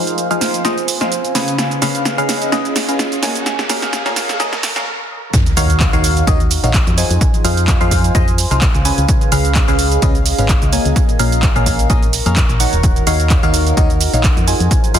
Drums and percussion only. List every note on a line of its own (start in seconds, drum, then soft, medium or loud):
0.07 closed hi-hat medium
0.07 shaker soft
0.18 closed hi-hat medium
0.18 shaker soft
0.31 closed hi-hat soft
0.31 shaker soft
0.41 snare medium
0.41 open hi-hat loud
0.41 shaker medium
0.54 closed hi-hat medium
0.54 shaker soft
0.65 snare medium
0.65 closed hi-hat medium
0.65 shaker soft
0.78 closed hi-hat soft
0.78 shaker soft
0.88 open hi-hat loud
0.88 shaker medium
1.01 snare medium
1.01 closed hi-hat soft
1.01 shaker soft
1.12 closed hi-hat medium
1.12 shaker soft
1.24 closed hi-hat soft
1.24 shaker soft
1.35 snare medium
1.35 open hi-hat loud
1.35 shaker medium
1.48 closed hi-hat medium
1.48 shaker soft
1.58 snare medium
1.58 closed hi-hat medium
1.58 shaker soft
1.71 closed hi-hat soft
1.71 shaker soft
1.82 snare medium
1.82 open hi-hat loud
1.82 shaker medium
1.95 closed hi-hat medium
1.95 shaker soft
2.05 snare medium
2.05 closed hi-hat soft
2.05 shaker soft
2.18 closed hi-hat soft
2.18 shaker soft
2.29 snare medium
2.29 open hi-hat loud
2.29 shaker medium
2.42 closed hi-hat soft
2.42 shaker soft
2.52 snare medium
2.52 closed hi-hat medium
2.52 shaker soft
2.65 closed hi-hat soft
2.65 shaker soft
2.76 snare medium
2.76 open hi-hat loud
2.76 shaker medium
2.89 closed hi-hat soft
2.89 shaker soft
2.99 snare medium
2.99 closed hi-hat medium
2.99 shaker soft
3.12 closed hi-hat soft
3.12 shaker soft
3.23 snare medium
3.23 open hi-hat loud
3.23 shaker medium
3.35 closed hi-hat medium
3.35 shaker soft
3.46 snare medium
3.46 closed hi-hat medium
3.46 shaker soft
3.59 snare medium
3.59 closed hi-hat soft
3.59 shaker soft
3.69 snare medium
3.69 open hi-hat loud
3.69 shaker medium
3.82 snare medium
3.82 closed hi-hat medium
3.82 shaker soft
3.93 snare medium
3.93 closed hi-hat medium
3.93 shaker soft
4.06 snare medium
4.06 closed hi-hat soft
4.06 shaker soft
4.16 snare medium
4.16 open hi-hat loud
4.16 shaker medium
4.29 snare medium
4.29 closed hi-hat soft
4.29 shaker soft
4.40 snare loud
4.40 closed hi-hat medium
4.40 shaker soft
4.53 snare medium
4.53 closed hi-hat soft
4.53 shaker soft
4.63 snare loud
4.63 open hi-hat loud
4.63 shaker medium
4.76 snare medium
4.76 closed hi-hat soft
4.76 shaker soft
5.34 kick loud
5.34 closed hi-hat medium
5.34 shaker soft
5.46 closed hi-hat soft
5.46 shaker soft
5.57 open hi-hat loud
5.57 shaker medium
5.70 closed hi-hat medium
5.70 shaker soft
5.80 kick loud
5.80 clap loud
5.80 closed hi-hat medium
5.80 shaker soft
5.93 closed hi-hat soft
5.93 shaker soft
6.04 open hi-hat loud
6.04 shaker medium
6.17 closed hi-hat medium
6.17 shaker soft
6.27 kick loud
6.27 closed hi-hat medium
6.27 shaker soft
6.40 closed hi-hat soft
6.40 shaker soft
6.51 open hi-hat loud
6.51 shaker medium
6.64 closed hi-hat medium
6.64 shaker soft
6.74 kick loud
6.74 clap loud
6.74 closed hi-hat medium
6.74 shaker soft
6.87 closed hi-hat soft
6.87 shaker soft
6.98 open hi-hat loud
6.98 shaker medium
7.11 closed hi-hat medium
7.11 shaker soft
7.21 kick loud
7.21 closed hi-hat medium
7.21 shaker soft
7.34 closed hi-hat soft
7.34 shaker soft
7.45 open hi-hat loud
7.45 shaker medium
7.57 closed hi-hat medium
7.57 shaker soft
7.68 kick loud
7.68 clap loud
7.68 closed hi-hat medium
7.68 shaker soft
7.81 closed hi-hat soft
7.81 shaker soft
7.91 kick medium
7.91 open hi-hat loud
7.91 shaker medium
8.04 closed hi-hat medium
8.04 shaker soft
8.15 kick loud
8.15 closed hi-hat medium
8.15 shaker soft
8.28 closed hi-hat soft
8.28 shaker soft
8.38 open hi-hat loud
8.38 shaker medium
8.51 closed hi-hat medium
8.51 shaker soft
8.62 kick loud
8.62 clap loud
8.62 closed hi-hat medium
8.62 shaker soft
8.75 closed hi-hat soft
8.75 shaker soft
8.85 open hi-hat loud
8.85 shaker medium
8.98 closed hi-hat medium
8.98 shaker soft
9.09 kick loud
9.09 closed hi-hat medium
9.09 shaker soft
9.21 closed hi-hat soft
9.21 shaker soft
9.32 open hi-hat loud
9.32 shaker medium
9.45 closed hi-hat medium
9.45 shaker soft
9.55 kick loud
9.55 clap loud
9.55 closed hi-hat medium
9.55 shaker soft
9.68 closed hi-hat soft
9.68 shaker soft
9.79 open hi-hat loud
9.79 shaker medium
9.92 closed hi-hat medium
9.92 shaker soft
10.02 kick loud
10.02 closed hi-hat medium
10.02 shaker soft
10.15 closed hi-hat soft
10.15 shaker soft
10.26 open hi-hat loud
10.26 shaker medium
10.38 closed hi-hat medium
10.38 shaker soft
10.49 kick loud
10.49 clap loud
10.49 closed hi-hat medium
10.49 shaker soft
10.62 closed hi-hat soft
10.62 shaker soft
10.73 open hi-hat loud
10.73 shaker medium
10.85 closed hi-hat medium
10.85 shaker soft
10.96 kick loud
10.96 closed hi-hat medium
10.96 shaker soft
11.09 closed hi-hat soft
11.09 shaker soft
11.19 open hi-hat loud
11.19 shaker medium
11.32 closed hi-hat medium
11.32 shaker soft
11.43 kick loud
11.43 clap loud
11.43 closed hi-hat soft
11.43 shaker soft
11.56 closed hi-hat soft
11.56 shaker soft
11.66 kick medium
11.66 open hi-hat loud
11.66 shaker medium
11.79 closed hi-hat soft
11.79 shaker soft
11.90 kick loud
11.90 closed hi-hat soft
11.90 shaker soft
12.03 closed hi-hat soft
12.03 shaker soft
12.13 open hi-hat loud
12.13 shaker medium
12.26 closed hi-hat soft
12.26 shaker soft
12.36 kick loud
12.36 clap loud
12.36 closed hi-hat medium
12.36 shaker soft
12.49 closed hi-hat soft
12.49 shaker soft
12.60 open hi-hat loud
12.60 shaker medium
12.73 closed hi-hat medium
12.73 shaker soft
12.83 kick loud
12.83 closed hi-hat medium
12.83 shaker soft
12.96 closed hi-hat soft
12.96 shaker soft
13.07 open hi-hat loud
13.07 shaker medium
13.20 closed hi-hat medium
13.20 shaker soft
13.30 kick loud
13.30 clap loud
13.30 closed hi-hat medium
13.30 shaker soft
13.43 closed hi-hat soft
13.43 shaker soft
13.54 open hi-hat loud
13.54 shaker medium
13.67 closed hi-hat medium
13.67 shaker soft
13.77 kick loud
13.77 closed hi-hat medium
13.77 shaker soft
13.90 closed hi-hat soft
13.90 shaker soft
14.01 open hi-hat loud
14.01 shaker medium
14.13 closed hi-hat soft
14.13 shaker soft
14.24 kick loud
14.24 clap loud
14.24 closed hi-hat medium
14.24 shaker soft
14.37 closed hi-hat soft
14.37 shaker soft
14.48 open hi-hat loud
14.48 shaker medium
14.60 closed hi-hat soft
14.60 shaker soft
14.71 kick loud
14.71 closed hi-hat medium
14.71 shaker soft
14.84 closed hi-hat soft
14.84 shaker soft
14.94 open hi-hat loud
14.94 shaker medium